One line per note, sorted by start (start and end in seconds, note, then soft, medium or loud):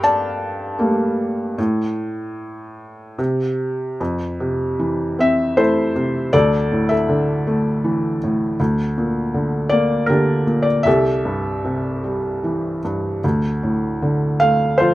0.00 1.54 G2 medium
0.00 1.60 A4 medium
0.00 1.59 A#4 medium
0.00 3.15 D5 medium
0.00 1.59 F5 loud
0.00 1.59 G5 medium
0.00 3.15 A5 medium
0.79 1.55 G3 soft
0.79 1.55 A3 soft
0.79 1.55 A#3 medium
1.58 3.15 A2 medium
3.18 3.97 C3 medium
4.00 6.30 F2 medium
4.40 5.92 C3 soft
4.79 6.29 E3 soft
5.19 6.30 C4 soft
5.19 5.60 E5 medium
5.57 6.31 A3 soft
5.57 6.29 E4 soft
5.57 6.29 A4 soft
5.57 6.35 C5 medium
5.95 6.32 C3 soft
6.33 8.55 D2 medium
6.33 6.89 A4 medium
6.33 6.91 D5 medium
6.72 8.18 A2 soft
6.89 8.18 A4 medium
6.89 8.17 E5 medium
7.09 8.55 D3 medium
7.47 8.56 A3 medium
7.84 8.57 E3 soft
8.23 8.59 A2 soft
8.60 10.83 D2 medium
8.98 10.44 A#2 medium
9.34 10.09 D3 soft
9.69 10.83 A#3 medium
9.69 10.10 D5 medium
10.06 10.84 D3 soft
10.06 10.82 D4 soft
10.06 10.82 G4 medium
10.06 10.67 A#4 medium
10.47 10.85 A#2 soft
10.62 10.83 D5 medium
10.83 13.19 C2 medium
10.83 12.81 G4 medium
10.83 12.81 A4 medium
10.83 12.79 E5 medium
11.25 12.80 G2 soft
11.65 13.20 C3 soft
12.04 13.20 G3 soft
12.44 13.21 E3 soft
12.85 13.23 G2 soft
13.24 14.94 D2 medium
13.63 14.94 A2 soft
14.02 14.94 D3 soft
14.40 14.94 A3 soft
14.40 14.77 F5 medium
14.78 14.94 F3 soft
14.78 14.94 F4 medium
14.78 14.94 A4 medium
14.78 14.94 C5 medium